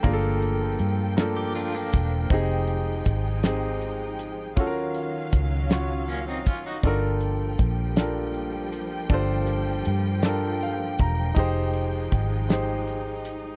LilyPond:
<<
  \new Staff \with { instrumentName = "Grand piano" } { \time 6/8 \key g \phrygian \tempo 4. = 53 << { r2. | r2. | r2. | r2. |
r2 f''8 bes''8 | r2. | } \\ { <bes d' f' aes' a'>4 r8 <bes d' f' a'>4 r8 | <c' ees' g' aes'>4 r8 <c' ees' g' aes'>4 r8 | <des' f' ges' a' bes'>4 r8 <des' f' ges' des''>4 r8 | <d' f' a' bes'>4 r8 <d' f' a' bes'>4 r8 |
<d' f' a' c''>4 r8 <d' f' a' bes'>4 r8 | <ees' g' aes' c''>4 r8 <ees' g' aes' c''>4 r8 | } >> }
  \new Staff \with { instrumentName = "Clean electric guitar" } { \time 6/8 \key g \phrygian r4. r16 g'16 <d' f'>16 <bes d'>8. | r2. | r2 <bes des'>16 <c' ees'>16 <des' f'>16 <ees' ges'>16~ | <ees' ges'>16 r2 r8. |
r2. | r2. | }
  \new Staff \with { instrumentName = "String section" } { \time 6/8 \key g \phrygian << { <f g''>2.~ | <f g''>2. | <ees f''>2. | <f g''>2.~ |
<f g''>2.~ | <f g''>2. | } \\ { <bes a'>2. | <aes ees'>2. | <ges des'>2. | <g bes>2.~ |
<g bes>2. | <aes ees'>2. | } >> }
  \new Staff \with { instrumentName = "Fingered electric bass" } { \clef bass \time 6/8 \key g \phrygian g,,4 g,4. e,,8 | f,,4 aes,,2 | ees,4 des,4. ges,,8 | g,,4 bes,,2 |
g,,4 g,4. e,,8 | f,,4 aes,,2 | }
  \new DrumStaff \with { instrumentName = "Drums" } \drummode { \time 6/8 <hh bd>8 hh8 hh8 <hh sn>8 hh8 <hh bd>8 | <hh bd>8 hh8 <hh bd>8 <hh sn>8 hh8 hh8 | <hh bd>8 hh8 <hh bd>8 <hh sn>8 hh8 <hh bd>8 | <hh bd>8 hh8 <hh bd>8 <hh sn>8 hh8 hh8 |
<hh bd>8 hh8 hh8 <hh sn>8 hh8 <hh bd>8 | <hh bd>8 hh8 <hh bd>8 <hh sn>8 hh8 hh8 | }
>>